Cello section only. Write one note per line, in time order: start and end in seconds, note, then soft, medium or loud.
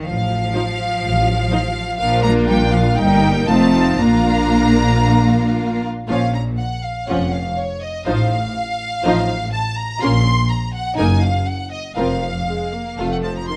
0.06 1.98 F3 medium
1.99 2.23 F3 medium
2.23 2.48 A#3 medium
2.48 2.56 G3 medium
2.72 2.80 F3 medium
2.97 3.46 G3 medium
3.47 3.98 A3 medium
3.99 5.79 A#3 medium
6.08 6.50 A#2 soft
7.08 7.49 F2 soft
8.07 8.47 A2 medium
9.05 9.45 A2 soft
10.01 10.41 A#2 medium
10.97 11.38 F#2 soft
11.96 12.39 F2 soft
12.98 13.40 F2 soft